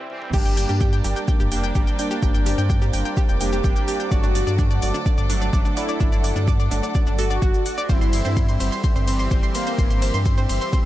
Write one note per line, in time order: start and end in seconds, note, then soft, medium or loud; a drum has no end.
0.10 0.32 E3 medium
0.10 0.32 G3 medium
0.10 0.32 C4 medium
0.10 mid tom medium
0.22 mid tom medium
0.33 0.66 G1 loud
0.33 1.49 G3 medium
0.33 1.49 A#3 medium
0.33 1.49 D4 medium
0.33 1.19 G4 loud
0.33 0.39 G4 medium
0.33 4.08 A#4 medium
0.33 5.63 C5 medium
0.33 7.86 D5 medium
0.33 7.86 D6 medium
0.33 kick loud
0.33 crash loud
0.33 shaker medium
0.45 0.49 G5 medium
0.45 mid tom medium
0.45 shaker medium
0.57 0.60 G5 medium
0.57 open hi-hat loud
0.57 shaker medium
0.67 1.01 G2 medium
0.67 0.74 G4 medium
0.67 4.11 A#5 medium
0.67 mid tom medium
0.67 shaker soft
0.81 0.84 G5 medium
0.81 kick loud
0.81 shaker medium
0.93 0.96 G5 medium
0.93 shaker soft
0.98 4.12 F5 medium
1.04 1.14 G1 medium
1.04 1.10 G4 medium
1.04 open hi-hat medium
1.04 shaker medium
1.16 1.20 G5 medium
1.16 shaker soft
1.28 1.31 G5 medium
1.28 kick loud
1.28 shaker medium
1.40 1.72 F1 medium
1.40 1.45 G4 medium
1.40 mid tom medium
1.40 shaker soft
1.52 1.73 G3 medium
1.52 1.72 A#3 medium
1.52 1.72 D4 loud
1.52 1.55 G5 medium
1.52 open hi-hat loud
1.52 shaker medium
1.64 1.67 G5 medium
1.64 shaker soft
1.75 1.85 G1 loud
1.75 2.20 G3 medium
1.75 2.20 A#3 medium
1.75 2.20 D4 loud
1.75 1.81 G4 medium
1.75 kick loud
1.75 shaker medium
1.87 1.90 G5 medium
1.87 shaker soft
1.99 2.60 D4 loud
1.99 2.02 G5 medium
1.99 open hi-hat medium
1.99 shaker medium
2.11 2.16 G4 medium
2.11 shaker soft
2.23 2.55 G1 loud
2.23 3.38 G3 medium
2.23 3.38 A#3 medium
2.23 3.38 D4 medium
2.23 2.26 G5 medium
2.23 kick loud
2.23 shaker medium
2.34 2.38 G5 medium
2.34 mid tom medium
2.34 shaker soft
2.46 2.52 G4 medium
2.46 open hi-hat loud
2.46 shaker medium
2.58 2.90 G2 medium
2.58 2.61 G5 medium
2.58 mid tom medium
2.58 shaker soft
2.70 2.73 G5 medium
2.70 kick loud
2.70 shaker medium
2.82 2.87 G4 medium
2.82 shaker soft
2.93 3.03 G1 medium
2.93 2.97 G5 medium
2.93 open hi-hat loud
2.93 shaker medium
3.05 3.09 G5 medium
3.05 shaker soft
3.17 3.22 G4 medium
3.17 kick loud
3.17 shaker medium
3.29 3.61 F1 medium
3.29 3.32 G5 medium
3.29 shaker soft
3.41 3.61 G3 medium
3.41 3.61 A#3 medium
3.41 3.62 D4 medium
3.41 4.02 G4 loud
3.41 3.44 G5 medium
3.41 open hi-hat loud
3.41 shaker medium
3.52 3.58 G4 medium
3.52 shaker soft
3.64 3.74 G1 loud
3.64 4.09 G3 loud
3.64 4.09 A#3 medium
3.64 4.09 D4 loud
3.64 3.68 G5 medium
3.64 kick loud
3.64 shaker medium
3.76 3.79 G5 medium
3.76 shaker soft
3.88 3.93 G4 medium
3.88 open hi-hat loud
3.88 shaker medium
4.00 4.03 G5 medium
4.00 shaker soft
4.11 4.44 G1 loud
4.11 5.27 F#3 medium
4.11 5.27 A3 medium
4.11 5.27 D4 medium
4.11 4.97 F#4 loud
4.11 7.86 A4 medium
4.11 8.80 A4 medium
4.11 4.15 D5 medium
4.11 7.86 F#5 medium
4.11 kick loud
4.11 shaker medium
4.23 4.29 D4 medium
4.23 mid tom medium
4.23 shaker soft
4.29 9.41 D5 medium
4.35 4.38 D5 medium
4.35 open hi-hat loud
4.35 shaker medium
4.47 4.79 G2 medium
4.47 4.50 D5 medium
4.47 mid tom medium
4.47 shaker soft
4.59 4.64 D4 medium
4.59 kick loud
4.59 shaker medium
4.71 4.74 D5 medium
4.71 shaker soft
4.82 4.92 G1 medium
4.82 4.86 D5 medium
4.82 open hi-hat loud
4.82 shaker medium
4.94 5.00 D4 medium
4.94 shaker soft
5.06 5.09 D5 medium
5.06 kick loud
5.06 shaker medium
5.18 5.50 G1 medium
5.18 5.21 D5 medium
5.18 7.89 F#5 medium
5.18 mid tom medium
5.18 shaker soft
5.30 5.50 F#3 medium
5.30 5.50 A3 medium
5.30 5.50 D4 medium
5.30 5.35 D4 medium
5.30 open hi-hat loud
5.30 shaker medium
5.42 5.45 D5 medium
5.42 shaker soft
5.53 5.63 G1 loud
5.53 5.98 F#3 medium
5.53 5.98 A3 medium
5.53 5.98 D4 loud
5.53 5.56 D5 medium
5.53 kick loud
5.53 shaker medium
5.65 5.70 D4 medium
5.65 shaker soft
5.77 6.38 E4 loud
5.77 5.80 D5 medium
5.77 open hi-hat loud
5.77 shaker medium
5.89 5.92 D5 medium
5.89 shaker soft
6.00 6.33 G1 loud
6.00 7.16 F#3 medium
6.00 7.16 A3 medium
6.00 6.06 D4 medium
6.00 7.16 D4 medium
6.00 kick loud
6.00 shaker medium
6.12 6.16 D5 medium
6.12 mid tom medium
6.12 shaker soft
6.24 6.27 D5 medium
6.24 open hi-hat loud
6.24 shaker medium
6.36 6.68 G2 medium
6.36 6.41 D4 medium
6.36 mid tom medium
6.36 shaker soft
6.48 6.51 D5 medium
6.48 kick loud
6.48 shaker medium
6.60 6.63 D5 medium
6.60 shaker soft
6.71 6.81 G1 medium
6.71 6.77 D4 medium
6.71 open hi-hat loud
6.71 shaker medium
6.83 6.86 D5 medium
6.83 shaker soft
6.95 6.98 D5 medium
6.95 kick loud
6.95 shaker medium
7.07 7.39 G1 medium
7.07 7.12 D4 medium
7.07 shaker soft
7.18 7.91 F#4 loud
7.18 7.24 A4 loud
7.18 open hi-hat loud
7.18 shaker medium
7.30 7.36 D5 medium
7.30 shaker soft
7.42 7.52 G1 loud
7.42 7.48 F#4 medium
7.42 kick loud
7.42 shaker medium
7.54 shaker soft
7.66 7.74 F#5 medium
7.66 open hi-hat loud
7.66 shaker medium
7.78 7.83 D5 loud
7.78 shaker soft
7.89 8.22 G1 loud
7.89 9.05 E3 medium
7.89 9.05 G3 medium
7.89 9.05 C4 medium
7.89 8.74 E4 loud
7.89 10.85 G4 medium
7.89 7.95 C5 medium
7.89 10.85 C5 medium
7.89 10.85 E5 medium
7.89 10.85 C6 medium
7.89 kick loud
7.89 ride medium
7.89 shaker medium
8.01 8.05 C6 medium
8.01 mid tom medium
8.01 shaker soft
8.13 8.16 C6 medium
8.13 open hi-hat loud
8.13 ride medium
8.13 shaker medium
8.24 8.57 G2 medium
8.24 10.85 C5 medium
8.24 8.30 C5 medium
8.24 mid tom medium
8.24 shaker soft
8.37 8.40 C6 medium
8.37 kick loud
8.37 ride medium
8.37 shaker medium
8.49 8.52 C6 medium
8.49 shaker soft
8.60 8.70 G1 medium
8.60 8.66 C5 medium
8.60 open hi-hat medium
8.60 ride medium
8.60 shaker medium
8.72 8.75 C6 medium
8.72 shaker soft
8.84 8.87 C6 medium
8.84 kick loud
8.84 ride medium
8.84 shaker medium
8.96 9.28 G1 medium
8.96 9.01 C5 medium
8.96 mid tom medium
8.96 shaker soft
9.07 9.28 E3 medium
9.07 9.28 G3 medium
9.07 9.28 C4 loud
9.07 9.11 C6 medium
9.07 10.85 E6 medium
9.07 open hi-hat loud
9.07 ride medium
9.07 shaker medium
9.19 9.23 C6 medium
9.19 shaker soft
9.31 9.41 G1 loud
9.31 9.76 E3 medium
9.31 9.76 G3 medium
9.31 9.76 C4 loud
9.31 9.37 C5 medium
9.31 kick loud
9.31 ride medium
9.31 shaker medium
9.43 9.46 C6 medium
9.43 shaker soft
9.55 10.16 A#3 loud
9.55 9.58 C6 medium
9.55 open hi-hat loud
9.55 ride medium
9.55 shaker medium
9.67 9.72 C5 medium
9.67 shaker soft
9.78 10.11 G1 loud
9.78 10.85 E3 medium
9.78 10.85 G3 medium
9.78 10.85 C4 medium
9.78 9.82 C6 medium
9.78 kick loud
9.78 ride medium
9.78 shaker medium
9.90 9.94 C6 medium
9.90 mid tom medium
9.90 shaker soft
10.02 10.07 C5 medium
10.02 open hi-hat loud
10.02 ride medium
10.02 shaker medium
10.14 10.46 G2 medium
10.14 10.17 C6 medium
10.14 mid tom medium
10.14 shaker soft
10.26 10.29 C6 medium
10.26 kick loud
10.26 ride medium
10.26 shaker medium
10.38 10.43 C5 medium
10.38 shaker soft
10.49 10.59 G1 medium
10.49 10.53 C6 medium
10.49 open hi-hat medium
10.49 ride medium
10.49 shaker medium
10.61 10.64 C6 medium
10.61 shaker soft
10.73 10.78 C5 medium
10.73 kick loud
10.73 ride medium
10.73 shaker medium